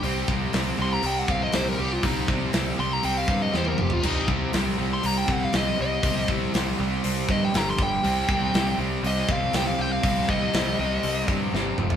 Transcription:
<<
  \new Staff \with { instrumentName = "Lead electric guitar" } { \time 4/4 \key c \minor \tempo 4 = 120 g'8 r4 c'''16 bes''16 g''16 fis''16 f''16 ees''16 c''16 bes'16 g'16 f'16 | ees'8 r4 c'''16 bes''16 g''16 f''16 f''16 ees''16 c''16 bes'16 g'16 f'16 | ees'8 r4 r16 c'''16 bes''16 g''16 fis''16 f''16 ees''8 ees''8~ | ees''8 r2 ees''16 g''16 bes''16 c'''16 g''8~ |
g''4. r8 ees''8 f''8 g''16 f''16 g''16 f''16~ | f''8 ees''2 r4. | }
  \new Staff \with { instrumentName = "Overdriven electric guitar" } { \clef bass \time 4/4 \key c \minor <c g c'>8 <c g c'>8 <c g c'>8 <c g c'>8 <c g c'>8 <c g c'>8 <c g c'>8 <c g c'>8 | <c g c'>8 <c g c'>8 <c g c'>8 <c g c'>8 <c g c'>8 <c g c'>8 <c g c'>8 <f, c f>8 | <c g c'>8 <c g c'>8 <c g c'>8 <c g c'>8 <c g c'>8 <c g c'>8 <c g c'>8 <c g c'>8 | <c g c'>8 <c g c'>8 <c g c'>8 <c g c'>8 <c g c'>8 <c g c'>8 <g, d g>8 <g, d g>8 |
<c g c'>8 <c g c'>8 <c g c'>8 <c g c'>8 <c g c'>8 <c g c'>8 <c g c'>8 <c g c'>8 | <c g c'>8 <c g c'>8 <c g c'>8 <c g c'>8 <c g c'>8 <c g c'>8 <c g c'>8 <f, c f>8 | }
  \new Staff \with { instrumentName = "Overdriven electric guitar" } { \clef bass \time 4/4 \key c \minor <c g c'>8 <c g c'>8 <c g c'>8 <c g c'>8 <c g c'>8 <c g c'>8 <c g c'>8 <c g c'>8 | <c g c'>8 <c g c'>8 <c g c'>8 <c g c'>8 <c g c'>8 <c g c'>8 <c g c'>8 <f, c f>8 | <c g c'>8 <c g c'>8 <c g c'>8 <c g c'>8 <c g c'>8 <c g c'>8 <c g c'>8 <c g c'>8 | <c g c'>8 <c g c'>8 <c g c'>8 <c g c'>8 <c g c'>8 <c g c'>8 <g, d g>8 <g, d g>8 |
<c g c'>8 <c g c'>8 <c g c'>8 <c g c'>8 <c g c'>8 <c g c'>8 <c g c'>8 <c g c'>8 | <c g c'>8 <c g c'>8 <c g c'>8 <c g c'>8 <c g c'>8 <c g c'>8 <c g c'>8 <f, c f>8 | }
  \new Staff \with { instrumentName = "Overdriven electric guitar" } { \clef bass \time 4/4 \key c \minor <c g c'>1 | <c g c'>2.~ <c g c'>8 r8 | <c g c'>1 | <c g c'>2. r4 |
<c g c'>1 | <c g c'>2.~ <c g c'>8 r8 | }
  \new Staff \with { instrumentName = "Picked electric bass" } { \clef bass \time 4/4 \key c \minor c,8 c,8 c,8 c,8 c,8 c,8 c,8 c,8 | c,8 c,8 c,8 c,8 c,8 g,8 e,8 f,,8 | c,8 c,8 c,8 c,8 c,8 c,8 c,8 c,8 | c,8 c,8 c,8 c,8 c,8 g,8 g,,8 g,,8 |
c,8 c,8 c,8 c,8 c,8 c,8 c,8 c,8 | c,8 c,8 c,8 c,8 c,8 g,8 g,,8 f,,8 | }
  \new DrumStaff \with { instrumentName = "Drums" } \drummode { \time 4/4 hho8 bd8 <hho sn>4 hho8 bd8 <hho sn>4 | <hho bd>8 bd8 <hho sn>4 hho8 bd8 sn16 tommh16 toml16 tomfh16 | cymc8 bd8 <hho sn>4 hho8 bd8 <hho sn>4 | <hho bd>8 bd8 <hho sn>4 hho8 bd8 <hho sn>8 bd8 |
hho8 bd8 <hho sn>4 hho8 bd8 <hho sn>4 | <hho bd>8 bd8 <hho sn>4 hho8 bd8 sn8 toml16 tomfh16 | }
>>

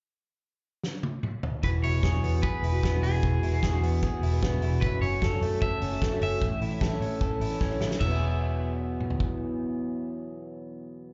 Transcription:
<<
  \new Staff \with { instrumentName = "Clean electric guitar" } { \time 4/4 \key e \major \tempo 4 = 151 r1 | b'8 cis''4. b'4. gis'8~ | gis'4. r2 r8 | b'8 cis''4 r8 e''4. e''8~ |
e''2. r4 | e''1~ | e''1 | }
  \new Staff \with { instrumentName = "Clean electric guitar" } { \time 4/4 \key e \major r1 | e8 e'8 gis'8 b8 gis'8 e'8 b8 e'8 | e8 e'8 gis'8 b8 gis'8 e'8 b8 e'8 | fis,8 cis'8 a'8 a8 a'8 cis'8 a8 cis'8 |
a,8 e'8 a'8 cis'8 a'8 e'8 cis'8 e'8 | <e fis b e' gis'>1~ | <e fis b e' gis'>1 | }
  \new Staff \with { instrumentName = "Twelve-string acoustic guitar" } { \clef bass \time 4/4 \key e \major r1 | <e, b, e gis b fis'>8. <e, b, e gis b fis'>8 <e, b, e gis b fis'>8. <e gis b fis'>8. <e, b, e gis b fis'>8 <e, b, e gis b fis'>8. | <e, b, e gis b fis'>8. <e, b, e gis b fis'>8 <e, b, e gis b fis'>8. <e gis b fis'>8. <e, b, e gis b fis'>8 <e, b, e gis b fis'>8. | <fis, cis e a cis' fis'>8. <fis, cis e a cis' fis'>8 <fis, cis e a cis' fis'>8. <e a cis' fis'>8. <fis, cis e a cis' fis'>8 <fis, cis e a cis' fis'>8. |
<a, a cis' e'>8. <a, e a cis' e'>8 <a, e a cis' e'>8. <e a cis' e'>8. <a, e a cis' e'>8 <a, e a cis' e'>8. | <e, b, fis gis b e'>1~ | <e, b, fis gis b e'>1 | }
  \new Staff \with { instrumentName = "Picked electric bass" } { \clef bass \time 4/4 \key e \major r1 | e,,8 e,,8 e,,8 e,8. r16 e,,8 e,,8 e,,8 | e,,8 e,,8 e,,8 e,8. r16 e,,8 e,,8 e,,8 | fis,,8 fis,,8 fis,,8 fis,8. r16 fis,,8 fis,,8 fis,,8 |
a,,8 a,,8 a,,8 a,8. r16 a,,8 a,,8 a,,8 | e,,1~ | e,,1 | }
  \new DrumStaff \with { instrumentName = "Drums" } \drummode { \time 4/4 r4 r4 sn8 tommh8 toml8 tomfh8 | <hh bd>8 hho8 <hh bd sn>8 hho8 bd8 hho8 <hh bd sn>8 hho8 | <hh bd>8 hho8 <hh bd sn>8 hho8 <hh bd>8 hho8 <hh bd sn>8 hho8 | <hh bd>8 hho8 <hh bd sn>8 hho8 <hh bd>8 hho8 <hh bd sn>8 hho8 |
<hh bd>8 hho8 <hh bd sn>8 hho8 <hh bd>8 hho8 <bd sn>8 sn16 sn16 | <cymc bd>4 r4 r8 toml16 tomfh16 bd4 | r4 r4 r4 r4 | }
>>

